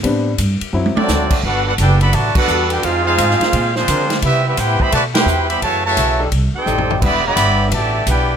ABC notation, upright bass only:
X:1
M:4/4
L:1/8
Q:"Swing" 1/4=172
K:G
V:1 name="Upright bass" clef=bass
A,,2 G,, z F,, z D,,2 | G,,,2 F,,,2 A,,, z E,,2 | =F,,2 _A,, z _B,,2 D,2 | C,2 A,, z B,,2 E,,2 |
F,,2 B,,,2 C,, z A,,,2 | E,,,2 G,,,2 A,,,2 B,,,2 |]